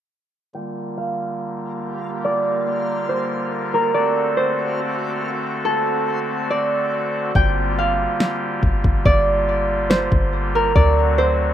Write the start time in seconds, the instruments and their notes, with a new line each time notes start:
0.54 pipe organ D3 G3 A#3 F4 A#4, synth texture A#3 G4 F5, harp G5
0.98 harp F5
2.25 harp D5
3.09 harp C5
3.74 harp A#4
3.94 pipe organ A3 C4 F#4 A4, synth texture C4 F#4 D5, harp D5
4.37 harp C5
5.65 harp A4
6.50 harp D5
7.35 808-style bass G1, pipe organ D3 G3 A#3 F4 G4, harp G5, kick
7.79 harp F5
8.20 snare
8.63 808-style bass G1, kick
8.84 808-style bass G1, kick
9.05 808-style bass G1, harp D5, kick
9.90 harp C5, snare
10.12 808-style bass G1, kick
10.55 harp A#4
10.75 808-style bass D2, pipe organ F#3 A3 C4 F#4, harp D5, kick
11.18 harp C5